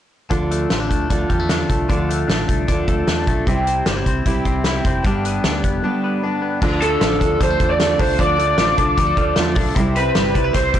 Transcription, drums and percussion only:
0.31 kick medium
0.31 closed hi-hat medium
0.51 closed hi-hat medium
0.70 snare medium
0.70 closed hi-hat medium
0.91 kick medium
0.91 closed hi-hat medium
1.10 kick medium
1.10 closed hi-hat medium
1.30 kick medium
1.30 closed hi-hat soft
1.49 snare medium
1.49 closed hi-hat medium
1.70 kick medium
1.70 closed hi-hat medium
1.90 kick medium
1.90 closed hi-hat medium
2.10 closed hi-hat medium
2.29 snare medium
2.29 closed hi-hat medium
2.49 kick medium
2.49 closed hi-hat medium
2.68 kick medium
2.68 closed hi-hat medium
2.88 kick medium
2.88 closed hi-hat soft
3.08 snare medium
3.08 closed hi-hat medium
3.27 kick medium
3.27 closed hi-hat medium
3.47 kick medium
3.47 closed hi-hat medium
3.67 closed hi-hat medium
3.86 snare loud
3.86 closed hi-hat medium
4.06 kick medium
4.06 closed hi-hat medium
4.26 kick medium
4.26 closed hi-hat medium
4.45 kick medium
4.45 closed hi-hat soft
4.64 snare medium
4.64 closed hi-hat medium
4.85 kick medium
4.85 closed hi-hat medium
5.04 kick medium
5.04 closed hi-hat medium
5.25 closed hi-hat medium
5.44 snare loud
5.44 closed hi-hat medium
5.64 kick medium
5.64 closed hi-hat medium
6.62 kick loud
6.62 crash medium
6.82 closed hi-hat medium
7.01 snare loud
7.01 closed hi-hat medium
7.21 kick medium
7.21 closed hi-hat medium
7.41 kick medium
7.41 closed hi-hat loud
7.60 kick medium
7.60 closed hi-hat soft
7.80 snare loud
7.80 closed hi-hat medium
8.00 kick loud
8.00 open hi-hat medium
8.19 kick medium
8.19 closed hi-hat medium
8.39 closed hi-hat medium
8.58 snare loud
8.58 closed hi-hat medium
8.78 kick medium
8.78 closed hi-hat medium
8.98 kick medium
8.98 closed hi-hat medium
9.17 kick medium
9.17 closed hi-hat soft
9.36 snare loud
9.36 closed hi-hat medium
9.55 kick medium
9.55 open hi-hat medium
9.76 kick loud
9.76 closed hi-hat medium
9.96 closed hi-hat medium
10.15 snare loud
10.15 closed hi-hat medium
10.35 kick medium
10.35 closed hi-hat medium
10.54 kick medium
10.54 snare soft
10.54 closed hi-hat loud
10.74 kick medium
10.74 closed hi-hat medium

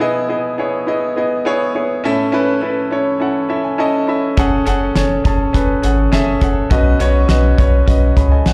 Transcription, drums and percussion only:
4.37 kick medium
4.37 closed hi-hat medium
4.66 closed hi-hat medium
4.96 snare medium
4.96 closed hi-hat medium
5.25 kick medium
5.25 closed hi-hat medium
5.54 kick medium
5.54 closed hi-hat medium
5.83 closed hi-hat medium
6.12 snare medium
6.12 closed hi-hat medium
6.41 kick medium
6.41 closed hi-hat medium
6.71 kick loud
6.71 closed hi-hat medium
7.00 closed hi-hat medium
7.29 snare medium
7.29 closed hi-hat medium
7.58 kick medium
7.58 closed hi-hat medium
7.88 kick medium
7.88 closed hi-hat medium
8.17 kick medium
8.17 closed hi-hat medium
8.46 snare medium
8.46 closed hi-hat medium

